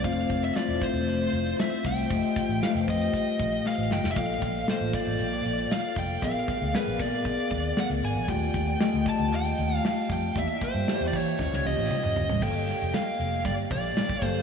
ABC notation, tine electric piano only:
X:1
M:4/4
L:1/8
Q:1/4=116
K:Bblyd
V:1 name="Tine electric piano"
[A,CFc] z [A,EFc]3 z3 | [A,FG_e] z [A,FG=Bc]3 z3 | [B,FAd] z [B,FAf]3 z3 | [_C_ABd] z [CABd]3 z3 |
[A,FGd] z [A,FG_e]3 z3 | [B,EGd] z [B,EGcd]2 [_DFG_e]3 z | [B,GAf]3 z4 [B,GAf] |]